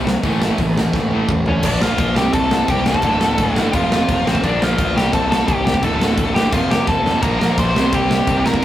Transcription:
Already playing: C2
0.05 C3 G3, snare
0.23 A1 A2 E3 A3, kick, open hi-hat
0.40 A2 E3 A3, snare
0.58 A1 A2 E3, kick, open hi-hat
0.75 A2 E3, snare
0.92 A1 A2 E3, kick, snare
1.11 A2 E3 A3, high tom
1.28 A1 A2 E3, kick, mid tom
1.45 D2 A2 E3 C#4 C#5, floor tom
1.62 A#1 A#2 F3 A#3 D4, kick, crash
1.66 D5
1.80 A#1 F4 F5, snare
1.98 A#1, kick, crash
2.14 C2 C3 G3 C4 G4 G5, snare
2.33 C2 A4 A5, kick, crash
2.51 snare
2.68 C2 C3 G3 G4 G5, kick, crash
2.72 C4
2.86 C2 A4 A5, snare
2.94 kick
3.02 D1 D2 A2 D3, kick, crash
3.20 D1, snare
3.38 D1, kick, crash
3.52 D3 G5
3.56 G1 D2 A2, snare
3.73 F1 F2 C3 F3 F4 F5, kick, crash
3.92 snare
4.08 F1, kick, crash
4.25 A1 F2 C3 F3 C4 C5, snare
4.35 kick
4.42 A#1 A#2 F3 A#3 D4 D5, kick, crash
4.60 A#1 F4 F5, snare
4.78 D2, kick, crash
4.94 C2 C3 G3 C4 G4 G5, snare
5.13 C2 A4 A5, kick, crash
5.31 A4 A5, snare
5.46 C2 C3 G3 C4 G4 G5, kick, crash
5.65 C2 G4 G5, snare
5.74 kick
5.82 D1 D2 A2 D3 A4 A5, kick, crash
6.00 D1, snare
6.17 D1, kick, crash
6.34 G1 D2 A2 D3 G4 G5, snare
6.51 F1 F2 C3 F3 F4 F5, kick, crash
6.70 G4 G5, snare
6.87 F1 A4 A5, kick, snare
7.04 F1 F2 C3 F3, snare
7.22 A#1 A#2 F3 A#3 A#4 A#5, kick, crash
7.40 A#1 A#4 A#5, snare
7.57 A#1 C5 C6, kick, crash
7.74 C2 C3 G3 C4, snare
7.93 C2 G4 G5, kick, crash
8.11 snare
8.26 C2 C3 G3 C4, kick, crash
8.44 C2 A#4 A#5, snare
8.54 kick
8.61 D2

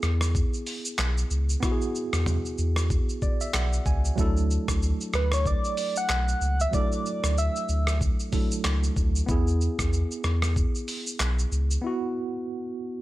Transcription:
Already playing: B3 E4 G#4
0.03 E2, cross-stick, shaker
0.21 cross-stick, shaker
0.35 kick, shaker
0.54 shaker
0.67 open hi-hat, shaker
0.85 shaker
0.98 B1, cross-stick, clap, shaker
1.18 shaker
1.31 C#2, shaker
1.49 shaker
1.60 B3 E4, kick, cross-stick, shaker
1.65 F#4
1.72 G#4
1.81 shaker
1.95 shaker
2.13 E2, cross-stick, shaker
2.26 mid tom, shaker
2.45 shaker
2.58 E2, shaker
2.76 cross-stick, shaker
2.90 kick, shaker
3.09 shaker
3.22 D5, kick, shaker
3.41 E5, shaker
3.54 B1 F#5, cross-stick, clap, shaker
3.73 shaker
3.86 C#2 G#5, kick, shaker
4.05 shaker
4.16 D2 F#3 A3 D4 E4, kick, shaker
4.21 A4
4.37 shaker
4.51 shaker
4.68 D2, kick, cross-stick, shaker
4.82 shaker
5.01 shaker
5.13 D2 B4, cross-stick, shaker
5.32 C#5, cross-stick, shaker
5.46 D5, kick, shaker
5.64 shaker
5.77 open hi-hat, shaker
5.96 F#5, shaker
6.09 B1, cross-stick, clap, shaker
6.28 shaker
6.41 C#2, shaker
6.60 E5, shaker
6.71 F#3 A3 D4 E4 D5, kick, shaker
6.76 A4
6.92 shaker
7.06 shaker
7.24 D2, cross-stick, shaker
7.38 E5, shaker
7.56 shaker
7.69 D2, shaker
7.87 cross-stick, shaker
8.01 kick, shaker
8.20 shaker
8.32 F#3 A3 D4 E4 A4, kick, open hi-hat, shaker
8.51 shaker
8.64 C#2, cross-stick, clap, shaker
8.84 shaker
8.96 D2, kick, shaker
9.15 shaker
9.26 E2 B3 E4, kick, shaker
9.31 G#4
9.47 shaker
9.61 shaker
9.79 E2, kick, cross-stick, shaker
9.93 shaker
10.11 shaker
10.24 E2, cross-stick, shaker
10.42 cross-stick, shaker
10.56 kick, shaker
10.75 shaker
10.88 open hi-hat, shaker
11.07 shaker
11.20 B1, cross-stick, clap, shaker
11.39 shaker
11.52 C#2, shaker
11.71 shaker
11.81 B3 E4
11.86 F#4

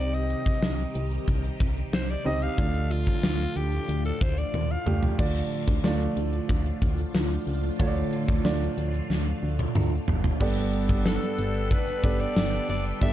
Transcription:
Already playing: C2 C3 D#3 G3 C4 D#4 G4 D5 D#5
0.14 D#5, closed hi-hat
0.30 closed hi-hat
0.46 kick, closed hi-hat
0.62 C2, snare
0.79 closed hi-hat
0.95 C2, closed hi-hat
1.11 closed hi-hat
1.28 C2, kick, closed hi-hat
1.44 closed hi-hat
1.60 C2, kick, closed hi-hat
1.77 closed hi-hat
1.93 C2 C5, snare
2.09 D5, closed hi-hat
2.25 C#2 C4 D#4 G4 D#5, open hi-hat
2.42 F5, closed hi-hat
2.58 D2 A2 D3 F3 A3 D4 F4 D5, kick, closed hi-hat
2.75 closed hi-hat
2.91 F4, closed hi-hat
3.07 kick, closed hi-hat
3.23 D2, snare, tambourine
3.40 closed hi-hat
3.56 D2 G4, closed hi-hat
3.72 closed hi-hat
3.89 D2, closed hi-hat
4.05 A4, closed hi-hat
4.21 D2 C5, kick, closed hi-hat
4.38 D5, closed hi-hat
4.54 D#2, high tom
4.71 F5
4.86 C#2 A3 D4 F4 G4, mid tom
5.03 floor tom
5.18 D2 A2 D3 F3 A3 D4 F4 D5, kick, crash
5.35 closed hi-hat
5.52 closed hi-hat
5.67 D2, kick, closed hi-hat
5.84 D2 A3 D4 F4 D5, snare, tambourine
6.00 closed hi-hat
6.16 D2, closed hi-hat
6.33 closed hi-hat
6.49 D2, kick, closed hi-hat
6.66 closed hi-hat
6.82 D2, kick, closed hi-hat
6.98 closed hi-hat
7.14 D2, snare, tambourine
7.31 closed hi-hat
7.47 C#2, open hi-hat
7.64 closed hi-hat
7.79 D2 D3 A3 D4 F4 C#5, kick, closed hi-hat
7.87 D5
7.96 closed hi-hat
8.13 closed hi-hat
8.28 D2, kick, closed hi-hat
8.44 D2 A3 D4 F4 D5, snare, tambourine
8.61 closed hi-hat
8.78 D2, closed hi-hat
8.94 closed hi-hat
9.10 D2, snare
9.43 D2
9.59 high tom
9.75 D2, mid tom
10.08 F#1, floor tom
10.24 floor tom
10.40 G1 G2 D3 G3 B3 D4 G4 A4 D5, kick, crash
10.57 closed hi-hat
10.73 closed hi-hat
10.89 kick, closed hi-hat
11.06 A4, snare, tambourine
11.22 closed hi-hat
11.38 G1, closed hi-hat
11.54 closed hi-hat
11.71 B4, kick, closed hi-hat
11.87 closed hi-hat
12.03 G1 B3 D4 G4 A4 D5, kick, closed hi-hat
12.20 D5, closed hi-hat
12.36 G1, snare, tambourine
12.53 closed hi-hat
12.69 F#1 D5, open hi-hat
12.85 closed hi-hat
13.01 G1 G2 B3 D4 G4 A4 D5 E5, kick, closed hi-hat

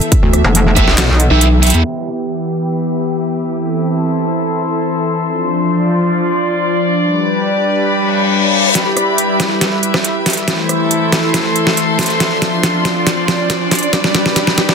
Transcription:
Already playing: E3 B3 A4 E5
0.01 closed hi-hat
0.12 kick, closed hi-hat
0.23 D2
0.33 cross-stick, closed hi-hat
0.44 F1, cross-stick
0.55 closed hi-hat
0.76 B3 G4 E5, kick, cross-stick, closed hi-hat
0.88 B1, snare
0.98 snare, clap, closed hi-hat
1.20 closed hi-hat
1.30 B1 B3 G4 E5
1.41 closed hi-hat
1.62 B3 G4 E5, open hi-hat
1.67 closed hi-hat
1.70 E2, closed hi-hat
1.84 E3 B3 G4
2.08 E5
2.62 B5
3.57 C4 E4 A4
3.96 A4
4.02 C6
5.30 F3 D4 C5
5.77 F4 D5
7.02 G3 B4
7.26 G4
7.80 B5
7.89 reverse cymbal
8.75 G3 E4 B4, snare, closed hi-hat, riser
8.97 cross-stick, closed hi-hat
9.05 E5
9.18 closed hi-hat
9.40 cross-stick, snare, closed hi-hat
9.61 snare, closed hi-hat
9.83 closed hi-hat
9.94 cross-stick, snare
10.04 closed hi-hat
10.26 snare, closed hi-hat, open hi-hat
10.33 closed hi-hat
10.37 closed hi-hat
10.48 E3 A3 E4 C5, snare, closed hi-hat
10.69 cross-stick, closed hi-hat
10.80 A4
10.91 closed hi-hat
11.12 cross-stick, snare, closed hi-hat
11.25 C6
11.34 snare, closed hi-hat
11.56 closed hi-hat
11.67 snare
11.77 closed hi-hat
11.99 snare, closed hi-hat, open hi-hat
12.06 closed hi-hat
12.10 closed hi-hat
12.20 F3 D4, snare, closed hi-hat
12.38 F4, snare, closed hi-hat
12.63 snare, closed hi-hat
12.85 snare, closed hi-hat
12.98 D5
13.07 snare, closed hi-hat
13.28 snare, closed hi-hat
13.50 snare, closed hi-hat
13.71 snare, closed hi-hat, open hi-hat
13.79 closed hi-hat
13.83 closed hi-hat
13.93 G3 B4, snare, closed hi-hat
14.04 snare
14.14 G4, snare, closed hi-hat
14.26 snare
14.34 B5, snare, closed hi-hat
14.47 snare
14.58 snare, closed hi-hat
14.69 snare

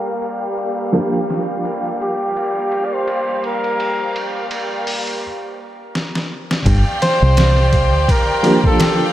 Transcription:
Already playing: F3 G3 A#3 D4 G4 A#4 F5
0.22 ride
0.58 ride
0.92 F3 A#3 D4 G4, ride
1.29 snare, ride
1.65 ride
2.01 G4, ride
2.37 ride
2.72 ride
2.85 D5
2.93 C5
3.08 ride
3.44 A#4, ride
3.64 ride
3.80 ride
4.16 ride
4.51 ride
4.87 open hi-hat
5.07 ride
5.95 snare
6.15 snare
6.51 snare
6.65 G1 G4 D5 F5 G5, kick, ride
7.02 C5, snare, ride
7.22 C2
7.37 snare, ride
7.73 kick, ride
7.94 D2
8.09 A#4, kick, ride
8.43 F3 A#3 D4 G4, ride
8.64 A4, kick
8.80 snare, ride

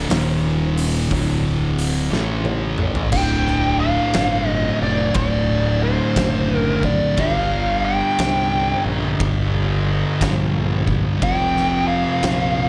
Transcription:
0.09 D#1 D#2 A#2 D#3, snare, open hi-hat
0.78 open hi-hat
1.10 D1 D2 A2 D3, kick, open hi-hat
1.78 open hi-hat
2.11 A1 A2 E3 A3, snare
2.45 high tom
2.78 mid tom
2.95 floor tom
3.11 D1 D2 A2 D3 G5, kick, crash
3.47 snare
3.80 F5
4.14 G1, snare, ride bell
4.48 D#5
4.81 F1 D5
5.14 D1 D5, kick, ride bell
5.83 C5
6.16 F#1, kick, snare, ride bell
6.56 A#4
6.83 D5, kick
7.17 G1 G2 D3 G3 F5, kick, ride bell
7.85 G5
8.19 C2, snare, ride bell
8.85 A#1
9.20 G1, kick, ride bell
10.21 A#1, kick, snare, ride bell
10.87 kick
11.20 F1 F2 C3 F3 G5, kick, ride bell
11.57 snare
11.88 F5
12.23 A#1, snare, ride bell

